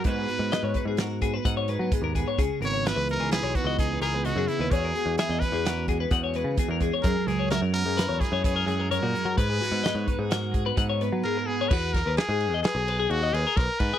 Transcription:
<<
  \new Staff \with { instrumentName = "Clean electric guitar" } { \time 5/4 \key e \lydian \tempo 4 = 129 b'16 gis'16 fis'8 dis''16 cis''16 b'16 gis'16 ais'8 gis'16 b'16 fis''16 cis''16 b'8 gis'16 ais'16 gis'16 cis''16 | gis'8 ais'16 cis''16 e''16 b'8 gis'16 b'16 cis''16 b'16 dis''8 b'16 ais'16 b'16 dis''16 gis'8 b'16 | cis''16 ais'16 gis'8 e''16 dis''16 b'16 gis'16 ais'8 gis'16 b'16 fis''16 cis''16 b'8 gis'16 ais'16 gis'16 cis''16 | gis'8 ais'16 cis''16 e''16 ais'8 gis'16 b'16 cis''16 ais'16 cis''8 ais'16 gis'16 ais'16 cis''16 fis'8 ais'16 |
b'16 gis'16 fis'8 dis''16 cis''16 b'16 gis'16 ais'8 gis'16 b'16 fis''16 cis''16 b'8 gis'16 ais'16 gis'16 cis''16 | fis'8 ais'16 b'16 ais'16 gis'8 dis''16 b'16 gis'16 b'16 gis'8 dis''16 b'16 ais'16 b'16 ais'8 gis'16 | }
  \new Staff \with { instrumentName = "Trumpet" } { \time 5/4 \key e \lydian b'2 r2. | r8 cis''8 b'8 ais'8 gis'8 fis'8 gis'8 gis'8 fis'8 e'8 | gis'4 gis'8 b'4 r2 r8 | ais'8 gis'8 ais'8 ais'4 gis'8 gis'4 ais'4 |
b'2 r2 ais'8 gis'8 | b'8 ais'8 gis'4 gis'4 fis'8 gis'8 ais'8 b'8 | }
  \new Staff \with { instrumentName = "Clean electric guitar" } { \time 5/4 \key e \lydian << { <gis b dis' fis'>8 b4 dis'8 fis'8 b8 dis'8 gis16 b8. b8 | r8 b4 dis'8 e'8 b8 dis'8 gis16 b8. b8 | <e gis cis' fis'>8 gis4 cis'8 fis'8 gis8 cis'8 gis4 gis8~ | gis8 gis4 b16 cis'16 e'8 gis8 b16 cis'16 gis4 gis8~ |
gis8 gis16 b8. dis'8 fis'8 gis16 b16 dis'8 b4 b8 | r1 r4 | } \\ { gis,4 gis2. gis,4 | cis4 e2. cis4 | e,4 e2. e,4 | fis,4 fis2. fis,4 |
gis,4 gis2. gis,4 | r1 r4 | } >> }
  \new Staff \with { instrumentName = "Picked electric bass" } { \clef bass \time 5/4 \key e \lydian gis,8 r16 gis,16 r16 gis,16 r16 gis,4~ gis,16 gis,8. fis16 r16 dis,8 r16 | cis,16 r16 gis,,8. cis,8 cis,8 b,,16 r16 cis,8. cis,8. fis,16 r16 dis,16 | e,8 r16 e,16 r16 e,16 r16 e,4~ e,16 e,8. cis16 r16 e,8 r16 | fis,16 r16 cis,8. fis,8 fis,8 e,16 r16 fis,8. fis,8. ais,16 r16 fis16 |
gis,8 r16 gis,16 r16 gis,16 r16 gis,4~ gis,16 gis,8. fis16 r4 | e,8. dis,16 r16 gis,8 e,16 r16 b,,8. dis,8 dis,16 r16 b,,16 r16 gis,16 r16 | }
  \new DrumStaff \with { instrumentName = "Drums" } \drummode { \time 5/4 <hh bd>8 hh8 <hh sn>8 <hh bd>8 <hh sn>8 <hh bd>8 <hh bd>8 hh8 <hh bd>8 <hh bd>8 | <hh bd>8 hh8 <hh sn>8 hh8 <hh sn>8 <hh bd>8 <hh bd>8 hh8 hh8 hh8 | <hh bd>8 hh8 <hh sn>8 <hh bd>8 <hh sn>8 <hh bd>8 <hh bd>8 hh8 <hh bd>8 <hh bd>8 | <hh bd>8 <hh sn>8 <hh sn>8 hh8 <hh sn>8 <hh bd sn>8 <hh bd>8 <hh sn>8 hh8 hh8 |
<hh bd>8 <hh sn>8 <hh sn>8 <hh bd>8 <hh sn>8 <hh bd>8 <hh bd>8 hh8 r4 | <cymc bd>8 <bd cymr sn>8 <cymr sn>8 cymr8 <cymr sn>8 cymr8 cymr8 cymr8 <bd cymr sn>8 <bd cymr>8 | }
>>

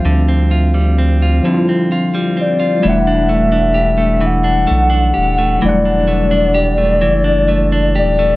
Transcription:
<<
  \new Staff \with { instrumentName = "Soft synth lead" } { \time 6/8 \key d \dorian \tempo 4. = 43 r2 r8 d''8 | e''4. fis''4. | d''2~ d''8 d''8 | }
  \new Staff \with { instrumentName = "Clean electric guitar" } { \time 6/8 \key d \dorian <d g c' f'>16 c'16 f'16 g16 c'16 f'16 d16 c'16 f'16 g16 c'16 f'16 | e16 d'16 a16 d'16 g'16 a16 e16 d'16 a16 d'16 g'16 a16 | e16 d'16 a16 d'16 g'16 a16 e16 d'16 a16 d'16 g'16 a16 | }
  \new Staff \with { instrumentName = "Tine electric piano" } { \time 6/8 \key d \dorian <f g c' e''>4. <f g c' e' f'>4. | <g a d' fis''>2. | <fis g a d' fis''>2. | }
  \new Staff \with { instrumentName = "Analog synth bass" } { \clef bass \time 6/8 \key d \dorian d,4. r4. | e,,2 b,,8 dis,,8 | e,,4. fis,,4 dis,,8 | }
>>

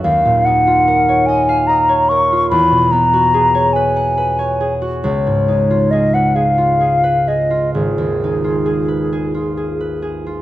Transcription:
<<
  \new Staff \with { instrumentName = "Flute" } { \time 6/8 \key gis \minor \tempo 4. = 46 eis''8 fis''4 gis''8 ais''8 cis'''8 | b''8 ais''4 gis''4~ gis''16 r16 | cis''4 dis''16 fis''16 eis''4 dis''8 | gis'2~ gis'8 r8 | }
  \new Staff \with { instrumentName = "Harp" } { \time 6/8 \key gis \minor <dis, cis' fis' cis''>16 ais,16 dis'16 eis'16 ais'16 cis''16 dis''16 eis''16 dis''16 cis''16 ais'16 eis'16 | e,16 b,16 b16 fis'16 gis'16 cis''16 b'16 fis''16 b'16 cis''16 gis'16 fis'16 | cis,16 gis,16 dis'16 eis'16 gis'16 b'16 gis'16 eis'16 gis'16 b'16 gis'16 eis'16 | gis,,16 dis,16 dis'16 eis'16 gis'16 b'16 gis'16 eis'16 gis'16 b'16 gis'16 eis'16 | }
>>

